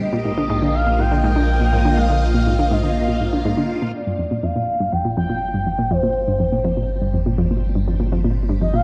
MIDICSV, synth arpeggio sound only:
0, 0, Header, 1, 2, 480
1, 0, Start_track
1, 0, Tempo, 491803
1, 6, Time_signature, 4, 2, 24, 8
1, 8622, End_track
2, 0, Start_track
2, 0, Title_t, "Synth arpeggio sound"
2, 0, Program_c, 0, 84
2, 124, Note_on_c, 0, 46, 76
2, 239, Note_off_c, 0, 46, 0
2, 246, Note_on_c, 0, 44, 73
2, 299, Note_off_c, 0, 44, 0
2, 367, Note_on_c, 0, 50, 75
2, 455, Note_off_c, 0, 50, 0
2, 485, Note_on_c, 0, 44, 99
2, 574, Note_off_c, 0, 44, 0
2, 605, Note_on_c, 0, 50, 74
2, 720, Note_off_c, 0, 50, 0
2, 844, Note_on_c, 0, 46, 73
2, 959, Note_off_c, 0, 46, 0
2, 965, Note_on_c, 0, 44, 77
2, 1019, Note_off_c, 0, 44, 0
2, 1086, Note_on_c, 0, 50, 74
2, 1175, Note_off_c, 0, 50, 0
2, 1207, Note_on_c, 0, 44, 102
2, 1295, Note_off_c, 0, 44, 0
2, 1326, Note_on_c, 0, 50, 75
2, 1440, Note_off_c, 0, 50, 0
2, 1566, Note_on_c, 0, 46, 73
2, 1680, Note_off_c, 0, 46, 0
2, 1685, Note_on_c, 0, 44, 75
2, 1739, Note_off_c, 0, 44, 0
2, 1806, Note_on_c, 0, 50, 74
2, 1894, Note_off_c, 0, 50, 0
2, 1927, Note_on_c, 0, 44, 96
2, 2015, Note_off_c, 0, 44, 0
2, 2049, Note_on_c, 0, 50, 76
2, 2161, Note_off_c, 0, 50, 0
2, 2289, Note_on_c, 0, 46, 75
2, 2401, Note_off_c, 0, 46, 0
2, 2410, Note_on_c, 0, 44, 82
2, 2461, Note_off_c, 0, 44, 0
2, 2528, Note_on_c, 0, 50, 76
2, 2615, Note_off_c, 0, 50, 0
2, 2647, Note_on_c, 0, 44, 99
2, 2735, Note_off_c, 0, 44, 0
2, 2767, Note_on_c, 0, 50, 75
2, 2880, Note_off_c, 0, 50, 0
2, 3009, Note_on_c, 0, 46, 73
2, 3122, Note_off_c, 0, 46, 0
2, 3128, Note_on_c, 0, 44, 77
2, 3180, Note_off_c, 0, 44, 0
2, 3249, Note_on_c, 0, 50, 77
2, 3336, Note_off_c, 0, 50, 0
2, 3368, Note_on_c, 0, 44, 100
2, 3455, Note_off_c, 0, 44, 0
2, 3488, Note_on_c, 0, 50, 75
2, 3601, Note_off_c, 0, 50, 0
2, 3729, Note_on_c, 0, 46, 72
2, 3841, Note_off_c, 0, 46, 0
2, 3968, Note_on_c, 0, 43, 78
2, 4081, Note_off_c, 0, 43, 0
2, 4088, Note_on_c, 0, 41, 71
2, 4140, Note_off_c, 0, 41, 0
2, 4208, Note_on_c, 0, 46, 77
2, 4295, Note_off_c, 0, 46, 0
2, 4326, Note_on_c, 0, 41, 98
2, 4414, Note_off_c, 0, 41, 0
2, 4447, Note_on_c, 0, 46, 76
2, 4561, Note_off_c, 0, 46, 0
2, 4687, Note_on_c, 0, 43, 75
2, 4801, Note_off_c, 0, 43, 0
2, 4806, Note_on_c, 0, 41, 81
2, 4859, Note_off_c, 0, 41, 0
2, 4927, Note_on_c, 0, 46, 72
2, 5015, Note_off_c, 0, 46, 0
2, 5047, Note_on_c, 0, 41, 98
2, 5135, Note_off_c, 0, 41, 0
2, 5167, Note_on_c, 0, 46, 74
2, 5280, Note_off_c, 0, 46, 0
2, 5406, Note_on_c, 0, 43, 75
2, 5520, Note_off_c, 0, 43, 0
2, 5528, Note_on_c, 0, 41, 76
2, 5580, Note_off_c, 0, 41, 0
2, 5646, Note_on_c, 0, 46, 74
2, 5735, Note_off_c, 0, 46, 0
2, 5767, Note_on_c, 0, 41, 96
2, 5855, Note_off_c, 0, 41, 0
2, 5886, Note_on_c, 0, 46, 77
2, 6000, Note_off_c, 0, 46, 0
2, 6124, Note_on_c, 0, 43, 78
2, 6239, Note_off_c, 0, 43, 0
2, 6246, Note_on_c, 0, 41, 81
2, 6299, Note_off_c, 0, 41, 0
2, 6366, Note_on_c, 0, 46, 73
2, 6454, Note_off_c, 0, 46, 0
2, 6486, Note_on_c, 0, 41, 102
2, 6574, Note_off_c, 0, 41, 0
2, 6607, Note_on_c, 0, 46, 75
2, 6720, Note_off_c, 0, 46, 0
2, 6846, Note_on_c, 0, 43, 74
2, 6960, Note_off_c, 0, 43, 0
2, 6966, Note_on_c, 0, 41, 79
2, 7019, Note_off_c, 0, 41, 0
2, 7087, Note_on_c, 0, 46, 76
2, 7175, Note_off_c, 0, 46, 0
2, 7205, Note_on_c, 0, 41, 103
2, 7294, Note_off_c, 0, 41, 0
2, 7327, Note_on_c, 0, 46, 76
2, 7440, Note_off_c, 0, 46, 0
2, 7568, Note_on_c, 0, 43, 77
2, 7681, Note_off_c, 0, 43, 0
2, 7687, Note_on_c, 0, 41, 80
2, 7740, Note_off_c, 0, 41, 0
2, 7806, Note_on_c, 0, 46, 80
2, 7895, Note_off_c, 0, 46, 0
2, 7926, Note_on_c, 0, 41, 97
2, 8015, Note_off_c, 0, 41, 0
2, 8046, Note_on_c, 0, 46, 75
2, 8160, Note_off_c, 0, 46, 0
2, 8286, Note_on_c, 0, 43, 78
2, 8400, Note_off_c, 0, 43, 0
2, 8406, Note_on_c, 0, 41, 77
2, 8459, Note_off_c, 0, 41, 0
2, 8527, Note_on_c, 0, 46, 75
2, 8615, Note_off_c, 0, 46, 0
2, 8622, End_track
0, 0, End_of_file